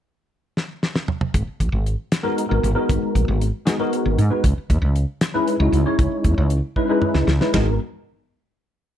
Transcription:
0.57 snare
0.83 snare
0.96 snare
1.08 mid tom
1.21 mid tom
1.34 G#1, kick, closed hi-hat
1.47 muted fretless electric bass stroke
1.60 B1, kick, closed hi-hat
1.72 G#1
1.86 closed hi-hat
2.12 snare, closed hi-hat
2.23 G#3 B3 D#4 F#4 A#4
2.38 closed hi-hat
2.49 G#1 G#3 B3 D#4 F#4 A#4
2.63 G#1, closed hi-hat
2.75 G#3 B3 D#4 F#4 A#4
2.89 G#1, kick, closed hi-hat
3.02 muted fretless electric bass stroke
3.15 B1, kick, closed hi-hat
3.28 G#1
3.41 closed hi-hat
3.65 G#3 B3 D#4 F#4 G#4, snare, closed hi-hat
3.79 G#3 B3 D#4 F#4 A#4
3.93 closed hi-hat
4.06 G#1
4.18 G#2, closed hi-hat
4.30 G#3 B3 D#4 F#4 B4
4.44 C#2, kick, closed hi-hat
4.58 muted fretless electric bass stroke
4.70 E2, kick, closed hi-hat
4.82 C#2
4.96 closed hi-hat
5.21 snare, closed hi-hat
5.34 G#3 C#4 D#4 E4 B4
5.47 closed hi-hat
5.59 C#2 G#3 C#4 D#4 E4 F#4
5.72 C#2, closed hi-hat
5.86 G#3 C#4 D#4 E4 C#5
5.99 C#2, kick, closed hi-hat
6.12 muted fretless electric bass stroke
6.24 E2, kick, closed hi-hat
6.38 C#2
6.50 closed hi-hat
6.76 G#3 C#4 D#4 E4 B4, kick
6.89 G#3 C#4 D#4 E4 B4
7.02 mid tom
7.14 C#2, snare
7.27 C#2, snare
7.40 G#3 C#4 D#4 E4 B4, snare
7.53 G#1 G#3 B3 D#4 F#4 A#4, snare, floor tom, ride bell

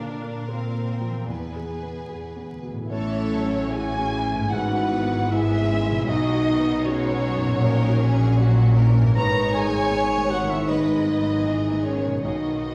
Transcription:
Already playing: A#2 A#3 C4 D4 A#4 D5 F5
0.10 A#4
0.23 A#3
0.49 C4 A#4 F5
0.75 A#3
0.91 G5
1.01 F3
1.11 E3
1.15 B3
1.20 G#4
1.24 E2 D5
1.29 E2 B3 G#4 B4 G#5
1.56 G#4
1.83 B3
2.09 E2 G#4
2.36 B3
2.50 D2
2.63 B2
2.72 A2
2.77 C#4
2.81 E4
2.86 E5
2.90 A1 A2 E3 C#4 E4 A4 C#5
3.17 E4
3.31 F#3
3.46 C#4
3.73 E3 C#4 E4 F#4 G#4 G#5
3.99 C#4
4.13 E4
4.27 E3
4.35 G#2
4.39 B3
4.43 E4
4.48 C#4 E5
4.52 G#1 G#2 E3 F#4 B4 F#5
4.78 E4
4.92 B3
5.04 B3
5.29 G#3 B3 E4 G#4 E5
5.56 B3
5.69 C#4
5.82 G#3
5.91 B2
5.96 B3
6.00 F#4
6.05 B1 B2 F#3 F#4 C#5
6.09 D#4 D#5
6.33 F#4
6.47 D#3
6.60 B3
6.85 G#3 C#4 F#4 C#5
7.11 B3
7.25 F#3
7.36 F#2
7.45 A#2
7.49 C#4
7.54 F#4
7.62 A#1 A#2 D#4 A#4
7.88 F#4
8.01 C#4 G#4
8.13 C#4
8.38 F#3 C#4 F#4
8.64 C#4
8.77 E3 A#4
8.90 A#2
8.99 G#2
9.04 G#3
9.08 D#4
9.12 G#2 B4 C#5 A#5
9.16 G#1 G#2 D#3 D#4
9.42 D#4
9.55 G#4 G#5
9.68 G#3
9.93 D#3 B3 D#4
10.18 G#3
10.31 F#4 F#5
10.43 D#3
10.49 E4 E5
10.68 G#3 B3 D#4 B4 D#5
10.96 D#4
11.08 F#3
11.22 G#3
11.46 E3 D#4 G#4
11.72 G#3
11.84 D#3 C#4 C#5
11.98 D#3
12.06 B2
12.11 F#3
12.15 D#4
12.20 C#5 D#5
12.24 B1 B2 D#3 D#4 F#4 D#5
12.51 D#4

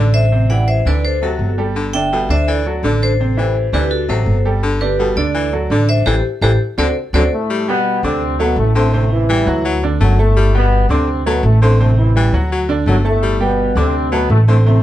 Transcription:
Already playing: A1 D3 D4 A4 D5
0.14 C5 E5
0.32 C3 C4 C5
0.49 E3 E4 G4 D5 F#5
0.68 C5 E5
0.85 D2 D3 E3 D4 B4 D5
1.05 A4 C5
1.22 C3 F#3 F#4 A4
1.39 G1
1.58 G3 G4 A4
1.76 D3
1.93 D3 D4 D5 E5 G5
2.12 B2 G3 G4 A4
2.29 D2 D3 D4 C5 D5 E5
2.48 E3 A4 D5
2.66 F#3 F#4 A4
2.83 A1 D3 D4 D5
3.02 A4 C5
3.20 C3 C4 C5
3.37 E3 E4 G4
3.72 D2 D3 E3 D4 G4 B4 D5
3.91 F#4 A4
4.08 A1 C3 F#3 F#4 A4 C5
4.26 G1
4.45 G3 G4 A4
4.63 D3
4.81 D3 D4 G4 B4 D5
4.99 B2 G3 G4 A4
5.16 D2 D3 D4 A4 D5
5.34 E3
5.53 F#3 F#4 A4
5.70 A1 D3 D4 D5
5.89 C5 E5
6.06 A1 E3 E4 G4 A4 C5
6.41 A1 E3 E4 G4 A4 C5
6.78 D2 D3 C4 D4 F#4 A4 C5 D5
7.13 D2 F#2 D3 F#3 C4 D4 F#4 A4 C5 D5
7.33 A2 A3
7.50 G3
7.68 B2 G3 B3 G4 G5
8.03 D2 C3 D3 C4 D4 D5 D6
8.39 B2 F#3 A3 B3 A4 A5
8.56 A1 A2 A3
8.75 A2 D3 A3 C4 C5 C6
8.93 A2 C3 A3 C4 C5
9.12 E3 E4
9.29 E3 G3 G4 G5
9.46 D2 F#3 F#4 F#5
9.65 F#3
9.83 D3 D4 D5
10.00 G1 F#2 F#3 A3
10.19 A2 A3 A4 A5
10.36 G3
10.54 B2 G3 B3 G4 G5
10.89 D2 C3 D3 C4 D4 D5 D6
11.26 B2 F#3 A3 B3 A4 A5
11.43 A1 A2 A3
11.62 A2 D3 A3 C4 C5 C6
11.80 A2 C3 A3 C4 C5
11.98 E3 E4
12.16 E3 G3 G4 G5
12.32 D2 F#3 F#4 F#5
12.52 F#3
12.69 D3 D4 D5
12.86 G1 F#2 F#3 A3
13.05 A2 A3 A4 A5
13.22 G3
13.40 B2 G3 B3 G4 G5
13.75 D2 C3 D3 C4 D4 D5 D6
14.12 B2 F#3 A3 B3 A4 A5
14.30 A1 A2 A3
14.48 A2 D3 A3 C4 C5 C6
14.65 A2 C3 A3 C4 C5

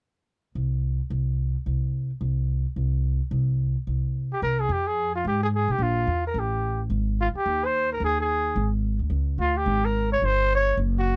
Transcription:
0.55 C2
1.10 C2
1.66 C2
2.21 C2
2.76 C2
3.31 C2
3.87 C2
4.33 G4
4.42 C2 A#4
4.60 G#4
4.69 F2 G4
4.87 G#4
5.15 F4
5.25 G#2 G4
5.43 G#4
5.56 G#4
5.68 B1 G4
5.78 A#1
5.83 F4
6.07 E2
6.27 A#4
6.34 A1
6.39 G4
6.90 G#1
7.21 F4
7.34 G4, muted upright bass stroke
7.46 D#2
7.65 C5
7.93 A#4
8.00 D#2
8.04 G#4
8.20 G#4
8.56 G#1
8.99 D2
9.10 C#2
9.38 D2 F4
9.57 G4
9.66 G#1
9.85 A#4
10.12 C#5
10.22 G1 C5
10.55 C#5
10.77 F#1
10.99 F#4

